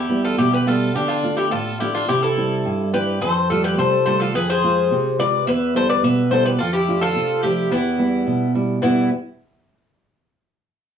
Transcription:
Already playing: nylon-string guitar E2, bouzouki E4 G4
0.09 nylon-string guitar G3 B3 E4
0.24 bouzouki F4 A4
0.38 nylon-string guitar B2, bouzouki E4 G4
0.53 bouzouki G4 B4
0.66 nylon-string guitar G3 B3 E5, bouzouki F4 A4
0.95 nylon-string guitar D3, bouzouki D4 G4
1.08 bouzouki D4 F4
1.23 nylon-string guitar A3 D4 F4
1.37 bouzouki E4 G4
1.51 nylon-string guitar A2, bouzouki F4 A4
1.80 nylon-string guitar A3 D4 F4, bouzouki E4 G4
1.94 bouzouki D4 F4
2.09 nylon-string guitar C3, bouzouki E4 G4
2.23 bouzouki E4 A4
2.37 nylon-string guitar G3 C4 E4
2.65 nylon-string guitar G2
2.93 nylon-string guitar G3 C4 E4, bouzouki G4 B4
3.21 nylon-string guitar F2, bouzouki A4 C5
3.50 nylon-string guitar G3 A3 F4, bouzouki F4 A4
3.64 bouzouki G4 B4
3.78 nylon-string guitar C3, bouzouki A4 C5
4.06 nylon-string guitar G3 A3 F4, bouzouki A4 C5
4.20 bouzouki F4 A4
4.34 nylon-string guitar F2, bouzouki G#4 B4
4.50 bouzouki G#4 C5
4.63 nylon-string guitar G#3 C4 F4
4.91 nylon-string guitar C3
5.18 nylon-string guitar G#3 C4 F4, bouzouki B4 D5
5.47 nylon-string guitar E2, bouzouki B4 E5
5.75 nylon-string guitar G3 B3 E4, bouzouki A4 C5
5.90 bouzouki B4 D5
6.03 nylon-string guitar B2, bouzouki B4 E5
6.31 nylon-string guitar G3 B3 E4, bouzouki A4 C5
6.46 bouzouki G4 B4
6.59 nylon-string guitar F2, bouzouki F4 A4
6.73 bouzouki E4 G4
6.88 nylon-string guitar A3 D4 F4
7.01 bouzouki F4 A4
7.16 nylon-string guitar C3
7.43 nylon-string guitar F3 A3 D4, bouzouki E4 G4
7.71 nylon-string guitar E2, bouzouki B3 E4
7.98 nylon-string guitar G3 B3 E4
8.27 nylon-string guitar B2
8.55 nylon-string guitar G3 B3 E4
8.82 nylon-string guitar E2 B2 E3 G3 B3, bouzouki B3 E4

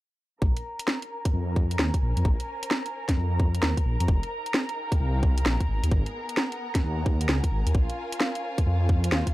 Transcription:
0.42 detuned saw bass A#1, string section C#4, violin section A#4 A#5, kick
0.57 closed hi-hat
0.64 string section A#4
0.79 closed hi-hat
0.88 snare
1.02 closed hi-hat
1.13 string section G#5
1.22 string section C5, kick, closed hi-hat
1.33 detuned saw bass F2
1.56 kick
1.71 closed hi-hat
1.79 detuned saw bass D#2, snare
1.94 kick, closed hi-hat
2.02 detuned saw bass A#1
2.17 detuned saw bass F2, closed hi-hat
2.25 detuned saw bass A#1, kick
2.40 closed hi-hat
2.63 closed hi-hat
2.71 snare
2.86 closed hi-hat
3.09 kick, snare, closed hi-hat
3.17 detuned saw bass F2
3.40 kick
3.55 closed hi-hat
3.63 detuned saw bass D#2, snare
3.77 kick, closed hi-hat
3.85 detuned saw bass A#1
4.00 detuned saw bass F2, closed hi-hat
4.08 detuned saw bass F1, string section D#4, kick
4.23 closed hi-hat
4.46 closed hi-hat
4.51 string section G#4, snare
4.69 closed hi-hat
4.81 string section F5 G5
4.92 kick, closed hi-hat
5.00 detuned saw bass C2
5.23 kick
5.38 closed hi-hat
5.46 detuned saw bass A#1, snare
5.60 kick, closed hi-hat
5.69 detuned saw bass G#1, string section B3
5.82 detuned saw bass D#2, string section A#4, closed hi-hat
5.91 detuned saw bass G#1, kick
6.06 closed hi-hat
6.29 string section F#5, closed hi-hat
6.37 snare
6.52 closed hi-hat
6.62 string section G#5
6.75 kick, snare, closed hi-hat
6.83 detuned saw bass D#2
7.06 kick
7.21 closed hi-hat
7.29 detuned saw bass C#2, snare
7.44 kick, closed hi-hat
7.51 detuned saw bass G#1
7.66 detuned saw bass D#2, closed hi-hat
7.74 detuned saw bass A#1, string section C#4, violin section F4 F5, kick
7.90 closed hi-hat
8.12 closed hi-hat
8.20 snare
8.35 closed hi-hat
8.45 string section C5
8.58 kick, closed hi-hat
8.66 detuned saw bass F2
8.89 kick
9.04 closed hi-hat
9.12 detuned saw bass D#2, snare
9.27 kick, closed hi-hat

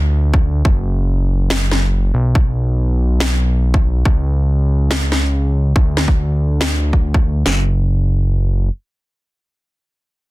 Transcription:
Already playing: analog synth bass D2
0.34 kick
0.65 analog synth bass F#1, kick
1.50 snare
1.71 snare
2.14 analog synth bass B1
2.35 kick
3.20 snare
3.74 kick
4.05 analog synth bass C#2, kick
4.91 snare
5.12 snare
5.76 analog synth bass D2, kick
5.97 snare
6.08 kick
6.61 snare
6.93 kick
7.14 kick
7.46 analog synth bass F#1, snare

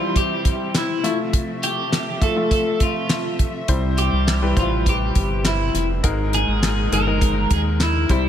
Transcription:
Already playing: upright piano C3 G3 E4 C5, string section C3 E3 G3 E4, clean electric guitar F4
0.16 clean electric guitar G4, kick, closed hi-hat
0.45 kick, closed hi-hat
0.74 clean electric guitar E4, snare, clap, closed hi-hat
1.03 string section F3 A3 E5, upright piano A3 F4 E5, snare, closed hi-hat
1.33 kick, closed hi-hat
1.63 clean electric guitar G4, closed hi-hat
1.92 snare, clap, closed hi-hat
2.21 upright piano A3 F4 E5, clean electric guitar A4, kick, closed hi-hat
2.36 upright piano A3 F4 E5
2.51 clean electric guitar A4, kick, closed hi-hat
2.80 clean electric guitar F4, kick, closed hi-hat
3.09 snare, clap, closed hi-hat
3.39 kick, closed hi-hat
3.68 analog synth bass C2, upright piano C3 G3 E4 C5, string section E3 G3, kick, closed hi-hat
3.98 clean electric guitar G4, closed hi-hat
4.13 analog synth bass C2
4.27 snare, clap, closed hi-hat
4.42 upright piano G3 E4 B4
4.57 analog synth bass A1, upright piano G3 E4 C5, clean electric guitar F4, kick, closed hi-hat
4.86 clean electric guitar G4, kick, closed hi-hat
5.15 analog synth bass G1, kick, closed hi-hat
5.45 clean electric guitar E4, snare, clap, closed hi-hat
5.74 analog synth bass F1, snare, closed hi-hat
6.03 analog synth bass G#1, upright piano G#2 G#3 D#4 A#4, string section A#2 D#3 G#3 D#4, kick, closed hi-hat
6.33 clean electric guitar G#4, closed hi-hat
6.48 analog synth bass G#1
6.63 snare, clap, closed hi-hat
6.92 analog synth bass G1, upright piano G#3 D#4 A#4, clean electric guitar A#4, closed hi-hat
7.07 upright piano G#3 D#4 A#4
7.21 kick, closed hi-hat
7.51 analog synth bass D#2, clean electric guitar G#4, kick, closed hi-hat
7.80 clean electric guitar E4, snare, clap, closed hi-hat
8.09 analog synth bass C2, string section C3 E3 G3 E5, upright piano C3 G3 E4 C5, clean electric guitar E4, kick, closed hi-hat

